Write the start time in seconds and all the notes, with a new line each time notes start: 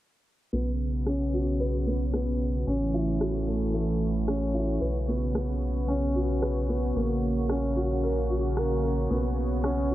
0.53 B1 C#3 B3
0.90 F#4
1.06 C#4, cross-stick
1.16 C#5
1.34 F#4
1.60 B4
1.87 B3
2.14 B3, cross-stick
2.67 A1 E3 C#4
2.75 A3
2.94 E4
3.21 F#4, cross-stick
3.48 A3
3.74 A3
4.28 C#4, cross-stick
4.55 E4
4.81 B1 C#3 B4
5.00 B3
5.08 B3
5.35 B3, cross-stick
5.88 C#4
6.16 F#4
6.42 B4, cross-stick
6.69 B3
6.96 A#1 A#3
7.49 C#4, cross-stick
7.76 F#4
8.03 A#4
8.30 F#4
8.57 A#4, cross-stick
8.83 A#4
9.10 B1 B3
9.18 B3
9.64 C#4, cross-stick
9.91 F#4